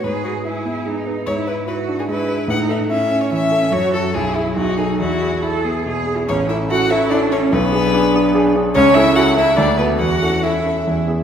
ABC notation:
X:1
M:3/4
L:1/16
Q:1/4=145
K:E
V:1 name="Violin"
B2 F2 G4 z4 | c2 B2 B3 G B4 | f2 e2 e3 c e4 | c2 A2 G2 E2 F2 G2 |
F4 E4 z4 | [K:A] c2 e2 f2 e2 d2 c2 | B8- B2 z2 | c2 e2 f2 e2 d2 B2 |
f4 e6 z2 |]
V:2 name="Cello"
G4 E4 D4 | E4 F4 E4 | D4 C8 | F4 E4 D4 |
E4 A2 G2 G3 E | [K:A] C2 E2 F2 E2 D2 C2 | B,8- B,2 z2 | C2 E2 F2 E2 D2 B,2 |
F4 E6 z2 |]
V:3 name="Grand piano"
G,,2 B2 E2 B,2 G,2 B2 | G,,2 B2 E2 =D2 G,2 B2 | A,,2 A2 E2 C2 E,2 A2 | F,,2 [FA]2 B,,,2 [EG]2 B,,,2 [DA]2 |
E,,2 G2 E2 B,2 B,,2 G2 | [K:A] A,,,2 [CEA]2 [CEA]2 [CEA]2 [CEA]2 [CEA]2 | B,,,2 [DG]2 [DG]2 [DG]2 [DG]2 [DG]2 | C,,2 [CEA]2 [CEA]2 [CEA]2 D,,2 [B,FA]2 |
E,,2 [CEA]2 [CEA]2 [CEA]2 E,,2 [B,EG]2 |]